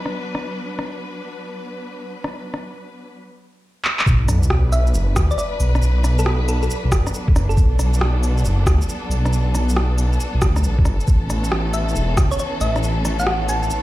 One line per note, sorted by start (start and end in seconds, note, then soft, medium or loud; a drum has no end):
0.00 3.15 F#3 medium
0.00 3.15 B3 medium
0.00 3.15 D4 medium
0.00 3.16 B4 medium
0.06 cross-stick soft
0.35 cross-stick medium
0.79 cross-stick soft
2.24 cross-stick medium
2.54 cross-stick soft
3.85 clap medium
3.99 clap medium
4.06 4.93 B1 loud
4.06 11.03 F#3 medium
4.06 13.82 B3 medium
4.06 11.03 D4 medium
4.06 7.54 B4 medium
4.06 kick loud
4.06 sub drop medium
4.06 shaker medium
4.29 cross-stick medium
4.29 cabasa medium
4.29 shaker medium
4.43 shaker medium
4.50 cross-stick loud
4.72 4.96 E5 medium
4.72 cabasa medium
4.87 shaker soft
4.94 5.15 F#1 medium
4.94 shaker medium
5.16 5.30 D2 medium
5.16 kick loud
5.16 cross-stick loud
5.16 cabasa medium
5.31 5.36 D5 medium
5.31 shaker medium
5.38 5.48 D5 medium
5.38 shaker medium
5.60 5.81 B1 medium
5.60 cabasa medium
5.75 cross-stick medium
5.75 shaker soft
5.82 6.69 B1 loud
5.82 shaker medium
6.04 cross-stick medium
6.04 cabasa medium
6.04 shaker medium
6.19 6.41 A4 medium
6.19 shaker medium
6.26 cross-stick loud
6.48 6.58 A4 medium
6.48 cabasa medium
6.62 6.67 A4 medium
6.62 shaker soft
6.70 shaker medium
6.84 6.91 B1 loud
6.91 7.05 F#1 loud
6.91 kick loud
6.91 cross-stick loud
6.91 cabasa medium
7.07 cross-stick medium
7.07 shaker medium
7.14 shaker medium
7.28 kick loud
7.36 7.56 F#1 medium
7.36 cross-stick medium
7.36 cabasa medium
7.49 7.94 A4 medium
7.49 shaker soft
7.57 8.44 B1 loud
7.57 13.82 A4 medium
7.57 kick loud
7.57 shaker medium
7.79 cross-stick medium
7.79 cabasa medium
7.79 shaker medium
7.94 shaker medium
8.01 cross-stick loud
8.23 cabasa medium
8.38 shaker soft
8.44 8.65 F#1 medium
8.44 shaker medium
8.66 8.80 D2 medium
8.66 kick loud
8.66 cross-stick loud
8.66 cabasa medium
8.82 shaker medium
8.89 shaker medium
9.09 9.30 B1 medium
9.09 cabasa medium
9.26 cross-stick medium
9.26 shaker soft
9.31 10.18 B1 loud
9.31 shaker medium
9.55 cross-stick soft
9.55 cabasa medium
9.55 shaker medium
9.69 shaker medium
9.77 cross-stick loud
9.98 cabasa medium
10.13 shaker soft
10.20 shaker medium
10.34 10.43 B1 loud
10.42 10.65 D2 loud
10.42 kick loud
10.42 cross-stick loud
10.42 cabasa medium
10.56 cross-stick medium
10.56 shaker medium
10.64 10.87 A1 loud
10.64 shaker medium
10.78 kick loud
10.85 10.99 F#1 loud
10.85 cross-stick medium
10.85 cabasa medium
11.00 shaker soft
11.07 11.94 A1 loud
11.07 13.82 E3 medium
11.07 13.82 C#4 medium
11.07 kick loud
11.07 shaker medium
11.30 cross-stick medium
11.30 cabasa medium
11.30 shaker medium
11.44 shaker medium
11.52 cross-stick loud
11.74 11.97 E5 medium
11.74 cabasa medium
11.89 shaker soft
11.95 12.16 E1 medium
11.95 shaker medium
12.17 12.31 C#2 medium
12.17 kick loud
12.17 cross-stick loud
12.17 cabasa medium
12.31 12.36 C#5 medium
12.31 shaker medium
12.39 12.49 C#5 medium
12.39 shaker medium
12.60 12.82 A1 medium
12.60 12.84 E5 medium
12.60 cabasa medium
12.76 cross-stick medium
12.76 shaker soft
12.83 13.70 A1 loud
12.83 shaker medium
13.05 cross-stick medium
13.05 cabasa medium
13.05 shaker medium
13.19 13.42 F#5 loud
13.19 shaker medium
13.27 cross-stick loud
13.49 13.82 A5 medium
13.49 cabasa medium
13.63 shaker soft
13.70 shaker medium